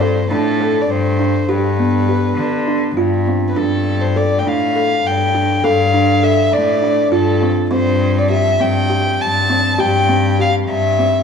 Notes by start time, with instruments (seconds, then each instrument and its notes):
Already playing: cello G2
0.00 kalimba A4, violin C5
0.30 cello A2, kalimba D4, violin A4
0.60 kalimba A4
0.82 violin D5
0.88 cello G2, violin C5
1.19 kalimba D4
1.48 cello G2, kalimba G4, violin B4
1.79 kalimba B3
2.09 kalimba G4
2.37 cello D3
2.68 kalimba D4
2.95 cello G2, kalimba F4
3.28 kalimba C4
3.48 violin B4
3.56 cello G2, kalimba D4, violin A4
4.01 violin C5
4.16 kalimba A4, violin D5
4.39 violin G5
4.44 cello A2, kalimba D4
4.48 violin F5
4.75 kalimba A4
5.04 cello G2, violin G5
5.34 kalimba D4
5.64 cello G2, kalimba A4, violin F5
5.94 kalimba D4
6.23 kalimba A4, violin E5
6.53 cello A2, violin D5
6.82 kalimba D4
7.12 cello G2, kalimba F4, violin A4
7.42 kalimba C4
7.71 cello G2, kalimba C4, violin C5
8.18 violin D5
8.30 kalimba G4, violin E5
8.60 cello G2, kalimba C4, violin G5
8.90 kalimba G4
9.20 cello G2, violin A5
9.50 kalimba C4
9.79 cello G2, kalimba G4, violin G5
10.09 kalimba C4
10.39 kalimba G4, violin F5
10.68 cello G2, violin E5
10.99 kalimba C4